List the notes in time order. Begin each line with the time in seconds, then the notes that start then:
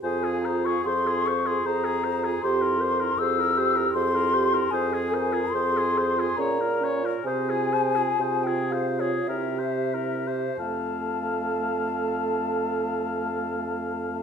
0.03 F2 F4 G#4 C5 G#5
0.24 F4 G#4
0.43 G#4 C5 A#5
0.65 F4 G#4 C#6
0.85 F2 G#4 C5 C6
1.06 F4 G#4
1.26 G#4 C5 C#6
1.46 F4 G#4 C6
1.65 F2 G#4 C5 A#5
1.85 F4 G#4
2.04 G#4 C5
2.24 F4 G#4
2.43 F2 G4 C5 C6
2.62 E4 A#4
2.80 G4 A#4 C5
3.00 E4 A#4
3.18 F2 G4 G#4 C5 E6
3.37 E4 A#4
3.57 G4 C5
3.76 E4 A#4
3.93 F2 G4 G#4 C5 C6
4.14 E4 A#4
4.32 G4 C5
4.52 E4 A#4
4.71 F2 G#4 C5 G#5
4.92 F4 G#4
5.12 G#4 A#4 C5
5.33 F4 G#4
5.51 F2 G#4 C5 C6
5.75 F4 G#4
5.95 G#4 C5
6.17 F4 G#4
6.37 A#2 C#4 C#5 A#5
6.59 F4 A#4
6.81 C#4 C#5
7.04 F4 A#4
7.24 C3 G#4 C5 G#5
7.49 F4 G#4
7.72 G#4 C5
7.96 F4 G#4
8.20 C3 F4 G#4 C5
8.44 F4 G#4 G5
8.71 G#4 C5 F5
9.00 F4 G#4 C#5
9.28 C3 E4 G4 A#4 E5
9.59 G4 C5
9.94 E4 A#4
10.28 G4 C5
10.57 F2 A3 A4 F5 A5